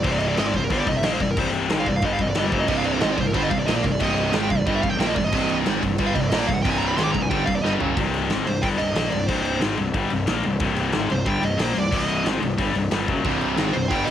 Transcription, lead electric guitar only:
0.03 C5
0.11 D5
0.19 D#5
0.28 D5
0.38 D#5
0.47 D5
0.56 C5
0.64 A#4
0.73 C5
0.80 D5
0.88 D#5
0.97 E5
1.05 D#5
1.14 C5
1.22 D5
1.30 A#4
1.39 C5
1.80 F5
1.88 D5
1.96 F5
2.05 D#5
2.12 F5
2.22 D#5
2.30 D5
2.39 D#5
2.46 G4
2.53 C5
2.60 D#5
2.69 D#5
2.77 F5
2.85 D5
2.94 C5
3.02 D#5
3.12 D5
3.20 C5
3.27 A#4
3.35 C5
3.43 D#5
3.50 F5
3.59 D5
3.66 D#5
3.76 D5
3.83 A#4
3.92 D5
4.01 D#5
4.43 G5
4.51 F5
4.59 D5
4.67 D#5
4.76 E5
4.82 F5
4.89 G5
4.99 G5
5.07 D#5
5.16 D5
5.24 D#5
6.07 F5
6.13 D#5
6.21 D5
6.30 D#5
6.38 D5
6.47 F5
6.54 F#5
6.63 G5
6.70 G#5
6.78 A#5
6.87 B5
6.96 C6
7.03 D6
7.12 A#5
7.21 G#5
7.30 G5
7.46 F5
7.55 D5
7.62 D#5
8.47 C5
8.62 G5
8.78 D#5
8.93 D#5
9.11 D5
9.27 C5
11.12 C5
11.27 G5
11.44 D#5
11.61 C5
11.78 D5
11.95 D#5
13.73 C5
13.88 G5
14.05 D#5

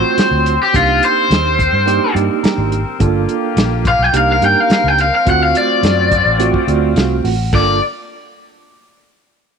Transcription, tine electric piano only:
Already playing: A3 C4 F4 F#4
0.73 A#3 D4 D#4 G4
1.86 A#3 D4 D#4 G4
2.15 A#3 D4 D#4 G4
2.43 A#5
3.00 A#3 D4 F4 A4
4.13 A#3 D4 D#4 G4
4.40 A#3 D4 D#4 G4
5.25 A3 C4 F4 F#4
6.39 A3 C4 F4 F#4
6.68 A3 C4 F4 F#4 D5
6.97 F5
7.24 F#5
7.53 A#3 D4 F4 A4

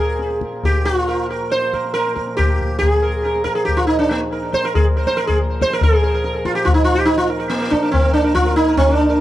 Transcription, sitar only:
Already playing: G#4
0.00 A#4
0.65 G4
0.85 F4
1.08 A#4
1.30 A#4
1.52 C5
1.74 A#4
1.94 A#4
2.16 A#4
2.37 G4
2.79 G4
2.90 G#4
3.02 A#4
3.25 A#4
3.44 A#4
3.55 G#4
3.65 G4
3.77 F4
3.87 D#4
3.99 D4
4.11 A#3
4.32 A#4
4.54 C5
4.65 A#4
4.75 G#4
4.97 A#4
5.07 C5
5.17 A#4
5.27 G#4
5.62 C5
5.73 A#4
5.82 G#4 A#4
5.94 A#4
6.03 A#4
6.14 A#4
6.24 A#4
6.45 F4
6.55 G4
6.65 F4
6.74 D#4
6.84 F4
6.95 G4
7.05 D#4
7.18 F4
7.30 A#4
7.40 A#4
7.50 A#3
7.60 A#4
7.70 D4
7.82 A#4
7.92 C4
8.03 A#4
8.13 D4
8.24 A#4
8.35 F4
8.46 A#4
8.56 D#4
8.68 A#4
8.77 C4
8.89 A#4
8.96 D4
9.10 A#4

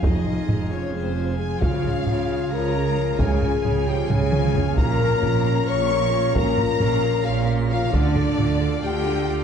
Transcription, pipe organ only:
Already playing: C4 F4 G#4 G#5
1.62 C#4 F5
4.78 F4 A#4
7.93 D4 A4 F5

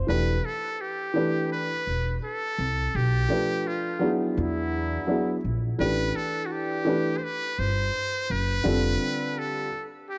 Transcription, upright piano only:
0.07 E3 A3 D4 G4 B4
1.14 E3 A3 D4 G4
1.18 B4
3.28 F3 A3 D4 G4 B4
3.99 F#3 B3 D4 E4
4.03 G#4
5.07 F#3 B3 D4 E4 G#4
5.78 E3 A3 D4 G4 B4
6.85 E3 A3 D4 G4
6.89 B4
8.64 D3 G3 C4 F4
8.68 A4

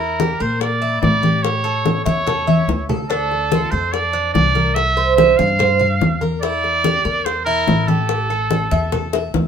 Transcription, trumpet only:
Already playing: A#4
0.41 C5
0.60 D5
1.02 D5
1.43 C#5
2.04 C#5
3.09 A4
3.71 C5
3.92 D5
4.34 D5
4.75 E5
5.16 E5
5.37 F5
6.41 D5
7.25 C5
7.45 A#4
7.88 A4

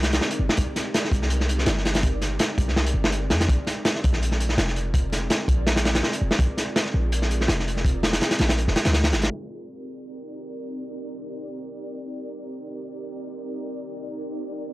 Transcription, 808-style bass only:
Already playing: C2
0.39 G1
0.58 C2
1.12 C2
1.66 G1
2.58 C2
2.94 G1
3.30 F2
3.49 A#1
4.04 A#1
4.58 F1
5.48 A#1
6.21 F1
6.39 A#1
6.94 A#1
7.49 F1
8.40 A#1
8.68 F1
8.86 D2
9.12 G#1

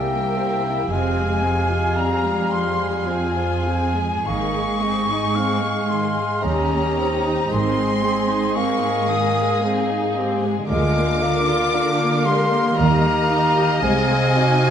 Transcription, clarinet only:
Already playing: G4
0.38 G4
3.07 F4
4.27 G#4
5.37 G#4
6.45 G4
7.51 G#4
8.04 G#4
8.56 A#4
9.64 G#4
10.18 G4
10.70 F4
11.74 F4
12.26 G4
12.77 G4
13.82 G#4
14.36 F#4

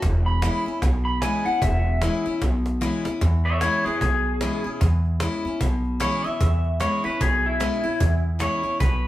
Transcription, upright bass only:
0.02 E1
0.67 muted upright bass stroke
0.82 B1
1.46 muted upright bass stroke
1.62 E1
2.26 muted upright bass stroke
2.42 B1
3.06 muted upright bass stroke
3.22 E2
3.85 muted upright bass stroke
4.01 B1
4.65 muted upright bass stroke
4.81 E2
5.45 muted upright bass stroke
5.61 B1
6.25 muted upright bass stroke
6.41 E2
7.05 muted upright bass stroke
7.21 B1
7.85 muted upright bass stroke
8.01 E2
8.64 muted upright bass stroke
8.81 B1

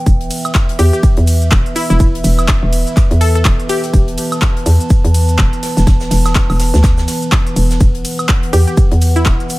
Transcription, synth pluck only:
0.79 G4
0.93 G4
1.76 E4
1.90 E4
3.21 A4
3.35 A4
3.69 G4
8.53 G4
8.67 G4
9.16 E4

